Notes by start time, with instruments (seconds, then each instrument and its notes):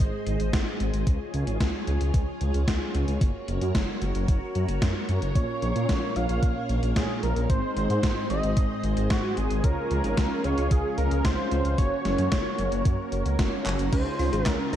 Already playing: string machine G#3 G#4 C5 D#5
0.00 detuned saw bass G#1, kick, closed hi-hat
0.27 detuned saw bass G#1, closed hi-hat
0.40 detuned saw bass G#1, closed hi-hat
0.53 detuned saw bass G#1, kick, snare, closed hi-hat
0.80 detuned saw bass G#1, closed hi-hat
0.94 detuned saw bass G#1, closed hi-hat
1.07 detuned saw bass C#2, string machine F4 G#4 C#5, kick, closed hi-hat
1.34 detuned saw bass C#2, closed hi-hat
1.47 detuned saw bass G#1, closed hi-hat
1.60 detuned saw bass C#2, kick, snare, closed hi-hat
1.87 detuned saw bass C#2, closed hi-hat
2.01 detuned saw bass C#2, closed hi-hat
2.14 detuned saw bass C#2, kick, closed hi-hat
2.41 detuned saw bass C#2, closed hi-hat
2.54 detuned saw bass C#2, closed hi-hat
2.68 detuned saw bass C#2, kick, snare, closed hi-hat
2.94 detuned saw bass C#2, closed hi-hat
3.08 detuned saw bass C#2, closed hi-hat
3.21 detuned saw bass F#1, string machine F#4 A#4, kick, closed hi-hat
3.48 detuned saw bass F#1, closed hi-hat
3.61 detuned saw bass F#2, closed hi-hat
3.75 detuned saw bass F#1, kick, snare, closed hi-hat
4.02 detuned saw bass F#1, closed hi-hat
4.15 detuned saw bass F#1, closed hi-hat
4.28 detuned saw bass F#1, kick, closed hi-hat
4.55 detuned saw bass F#2, closed hi-hat
4.69 detuned saw bass F#1, closed hi-hat
4.82 detuned saw bass F#2, kick, snare, closed hi-hat
5.09 detuned saw bass F#2, closed hi-hat
5.22 detuned saw bass F#1, closed hi-hat
5.35 detuned saw bass A#1, analog polysynth A#2 A#3 C#4 F4 C#5, string machine A#3 F5, analog synth lead C#5, kick, closed hi-hat
5.62 detuned saw bass A#1, analog synth lead C#5, closed hi-hat
5.76 detuned saw bass A#2, closed hi-hat
5.89 detuned saw bass A#1, kick, snare, closed hi-hat
6.16 detuned saw bass A#1, analog polysynth A#2 A#3 C#4 F4 C#5, analog synth lead F5, closed hi-hat
6.29 detuned saw bass A#1, closed hi-hat
6.43 detuned saw bass A#1, kick, closed hi-hat
6.69 detuned saw bass A#1, closed hi-hat
6.83 detuned saw bass A#1, closed hi-hat
6.96 detuned saw bass A#1, analog synth lead G#4, kick, snare, closed hi-hat
7.23 detuned saw bass A#1, analog synth lead A#4, closed hi-hat
7.36 detuned saw bass A#1, closed hi-hat
7.50 detuned saw bass G#1, analog polysynth G#2 G#3 C4 D#4 C5, string machine G#3 G#4 C5 D#5, analog synth lead C5, kick, closed hi-hat
7.77 detuned saw bass G#1, analog synth lead C5, closed hi-hat
7.90 detuned saw bass G#2, closed hi-hat
8.03 detuned saw bass G#1, kick, snare, closed hi-hat
8.30 detuned saw bass G#1, analog polysynth G#2 G#3 C4 D#4 C5, analog synth lead D#5, closed hi-hat
8.43 detuned saw bass G#1, closed hi-hat
8.57 detuned saw bass G#1, kick, closed hi-hat
8.84 detuned saw bass G#1, closed hi-hat
8.97 detuned saw bass G#1, closed hi-hat
9.10 detuned saw bass G#1, analog synth lead F#4, kick, snare, closed hi-hat
9.37 detuned saw bass G#1, analog synth lead G#4, closed hi-hat
9.51 detuned saw bass G#1, closed hi-hat
9.64 detuned saw bass C#2, analog polysynth C#3 G#3 C#4 F4 C#5, string machine C#4 F4, analog synth lead A#4, kick, closed hi-hat
9.91 detuned saw bass C#2, analog synth lead A#4, closed hi-hat
10.04 detuned saw bass G#1, closed hi-hat
10.17 detuned saw bass C#2, kick, snare, closed hi-hat
10.44 detuned saw bass C#2, analog polysynth C#3 G#3 C#4 F4 F5, analog synth lead C#5, closed hi-hat
10.58 detuned saw bass C#2, closed hi-hat
10.71 detuned saw bass C#2, analog synth lead G#4, kick, closed hi-hat
10.98 detuned saw bass C#2, analog synth lead A#4, closed hi-hat
11.11 detuned saw bass C#2, closed hi-hat
11.25 detuned saw bass C#2, analog synth lead C5, kick, snare, closed hi-hat
11.51 detuned saw bass C#2, closed hi-hat
11.65 detuned saw bass C#2, closed hi-hat
11.78 detuned saw bass F#1, analog polysynth A#3 C#4 F#4 C#5, string machine F#4 A#4, analog synth lead C#5, kick, closed hi-hat
12.05 detuned saw bass F#1, snare, closed hi-hat
12.18 detuned saw bass F#2, closed hi-hat
12.32 detuned saw bass F#1, kick, snare, closed hi-hat
12.58 detuned saw bass F#1, analog polysynth A#3 C#4 F#4 C#5, closed hi-hat
12.72 detuned saw bass F#1, closed hi-hat
12.85 detuned saw bass F#2, kick, closed hi-hat
13.12 detuned saw bass F#1, closed hi-hat
13.26 detuned saw bass C#2, closed hi-hat
13.39 detuned saw bass F#1, analog polysynth A#3 C#4 F#4 C#5, kick, snare, closed hi-hat
13.66 detuned saw bass F#1, clap, closed hi-hat
13.79 detuned saw bass F#1, closed hi-hat
13.92 detuned saw bass C#2, analog polysynth C#3 G#3 C#4 D#4 F4, synth arpeggio sound C#4, string machine C#4 G#4 D#5 F5, analog synth lead C5, kick, closed hi-hat, crash
14.06 synth arpeggio sound D#4
14.19 detuned saw bass C#2, synth arpeggio sound F4, open hi-hat
14.33 detuned saw bass G#1, synth arpeggio sound G#4, closed hi-hat
14.46 detuned saw bass C#2, analog synth lead A#4, synth arpeggio sound C#5, kick, snare, clap, closed hi-hat
14.59 synth arpeggio sound C#4
14.73 detuned saw bass C#2, analog polysynth C#3 G#3 D#4 F4 C#5, synth arpeggio sound D#4, analog synth lead A#4